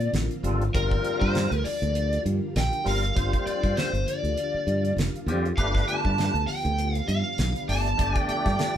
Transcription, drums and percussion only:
0.00 closed hi-hat soft
0.14 snare medium
0.14 closed hi-hat medium
0.31 closed hi-hat soft
0.44 closed hi-hat medium
0.62 closed hi-hat soft
0.75 kick loud
0.75 closed hi-hat medium
0.91 kick medium
1.04 closed hi-hat medium
1.22 kick medium
1.35 snare medium
1.35 closed hi-hat medium
1.52 closed hi-hat soft
1.65 open hi-hat medium
1.82 closed hi-hat soft
1.95 closed hi-hat medium
2.13 closed hi-hat soft
2.26 closed hi-hat medium
2.56 snare medium
2.56 closed hi-hat medium
2.73 closed hi-hat soft
2.86 open hi-hat medium
3.04 closed hi-hat soft
3.17 kick loud
3.17 closed hi-hat medium
3.33 kick medium
3.33 closed hi-hat soft
3.47 closed hi-hat medium
3.63 kick medium
3.63 closed hi-hat soft
3.77 snare medium
3.77 closed hi-hat medium
3.94 closed hi-hat soft
4.08 closed hi-hat medium
4.25 closed hi-hat soft
4.37 closed hi-hat medium
4.68 closed hi-hat medium
4.85 closed hi-hat soft
4.98 snare medium
4.98 closed hi-hat medium
5.16 closed hi-hat soft
5.28 closed hi-hat medium
5.45 closed hi-hat soft
5.58 kick loud
5.58 closed hi-hat medium
5.75 kick medium
5.75 snare soft
5.88 closed hi-hat medium
6.05 kick medium
6.18 snare medium
6.18 closed hi-hat medium
6.35 closed hi-hat soft
6.48 open hi-hat medium
6.65 closed hi-hat soft
6.78 closed hi-hat medium
6.95 closed hi-hat soft
7.09 closed hi-hat medium
7.38 snare medium
7.38 closed hi-hat medium
7.56 closed hi-hat soft
7.69 open hi-hat medium
7.86 closed hi-hat soft
7.99 kick loud
7.99 closed hi-hat medium
8.15 kick medium
8.15 closed hi-hat soft
8.29 closed hi-hat medium
8.46 kick medium
8.46 snare soft
8.46 closed hi-hat soft
8.59 snare medium
8.59 closed hi-hat medium

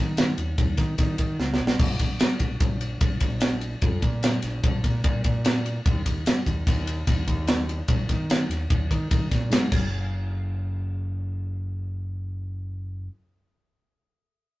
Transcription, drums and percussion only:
0.17 snare loud
0.17 ride loud
0.38 ride medium
0.58 kick loud
0.58 ride medium
0.77 kick medium
0.77 snare soft
0.77 ride medium
0.98 kick loud
0.98 snare soft
0.98 ride loud
1.18 kick medium
1.18 ride medium
1.40 snare medium
1.54 snare medium
1.67 snare loud
1.79 kick loud
1.79 crash loud
1.99 kick medium
1.99 ride medium
2.19 snare loud
2.19 ride loud
2.39 kick medium
2.39 ride medium
2.60 kick loud
2.60 ride loud
2.81 ride medium
3.01 kick loud
3.01 ride loud
3.20 kick medium
3.20 ride medium
3.40 snare loud
3.40 ride loud
3.61 ride medium
3.82 kick loud
3.82 ride loud
4.02 kick medium
4.02 ride medium
4.23 snare loud
4.23 ride loud
4.42 snare soft
4.42 ride medium
4.63 kick loud
4.63 ride loud
4.84 kick medium
4.84 ride medium
5.04 kick loud
5.04 ride loud
5.24 kick medium
5.24 ride medium
5.45 snare loud
5.45 ride loud
5.66 ride medium
5.86 kick loud
5.86 ride loud
6.06 kick medium
6.06 ride medium
6.26 snare loud
6.26 ride loud
6.46 kick medium
6.46 ride medium
6.67 kick loud
6.67 snare soft
6.67 ride loud
6.87 ride medium
7.07 kick loud
7.07 snare soft
7.07 ride loud
7.28 kick medium
7.28 ride medium
7.47 snare loud
7.47 ride loud
7.69 ride medium
7.88 kick loud
7.88 ride loud
8.09 kick medium
8.09 snare soft
8.09 ride medium
8.30 snare loud
8.30 ride loud
8.51 snare soft
8.51 ride medium
8.70 kick loud
8.70 ride medium
8.91 kick medium
8.91 ride medium
9.11 kick loud
9.11 ride loud
9.31 kick medium
9.31 snare soft
9.31 ride medium
9.52 snare loud
9.52 ride loud
9.72 kick loud
9.72 crash medium

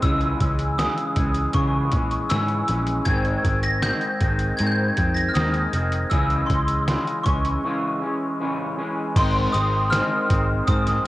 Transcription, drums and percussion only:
0.03 kick medium
0.03 closed hi-hat medium
0.21 closed hi-hat soft
0.41 kick medium
0.41 closed hi-hat medium
0.59 closed hi-hat soft
0.79 snare medium
0.79 closed hi-hat medium
0.98 closed hi-hat soft
1.16 kick medium
1.16 closed hi-hat medium
1.35 closed hi-hat soft
1.53 kick medium
1.53 closed hi-hat medium
1.92 kick medium
1.92 closed hi-hat medium
2.11 closed hi-hat soft
2.30 snare loud
2.30 closed hi-hat medium
2.48 closed hi-hat soft
2.68 closed hi-hat medium
2.87 closed hi-hat soft
3.06 kick loud
3.06 closed hi-hat medium
3.25 closed hi-hat soft
3.45 kick medium
3.45 closed hi-hat medium
3.63 closed hi-hat medium
3.82 snare medium
3.82 closed hi-hat medium
4.01 closed hi-hat soft
4.21 kick medium
4.21 closed hi-hat medium
4.39 closed hi-hat soft
4.59 closed hi-hat medium
4.97 kick medium
4.97 closed hi-hat medium
5.17 closed hi-hat soft
5.35 snare loud
5.35 closed hi-hat medium
5.54 closed hi-hat soft
5.73 closed hi-hat medium
5.92 closed hi-hat soft
6.11 kick loud
6.11 closed hi-hat medium
6.30 closed hi-hat soft
6.50 kick medium
6.50 closed hi-hat medium
6.68 closed hi-hat soft
6.88 snare loud
6.88 closed hi-hat medium
7.07 closed hi-hat soft
7.26 kick medium
7.26 closed hi-hat medium
7.45 closed hi-hat soft
9.16 kick loud
9.16 closed hi-hat medium
9.16 crash medium
9.54 closed hi-hat medium
9.92 snare loud
9.92 closed hi-hat loud
10.30 kick medium
10.30 closed hi-hat medium
10.68 kick medium
10.68 closed hi-hat medium
10.87 snare soft
10.87 closed hi-hat medium

